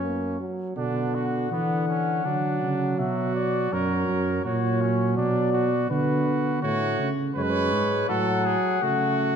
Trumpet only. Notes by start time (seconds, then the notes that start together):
Already playing: C#4
0.77 D4
1.15 F#4
1.52 B3
1.88 C#4
2.26 D4
3.00 F#4
3.73 A#4
4.45 F#4
4.82 C#4
5.17 D4
5.53 F#4
5.91 F#4
6.62 F#4
7.35 B4
8.09 A4
8.45 G#4
8.83 F#4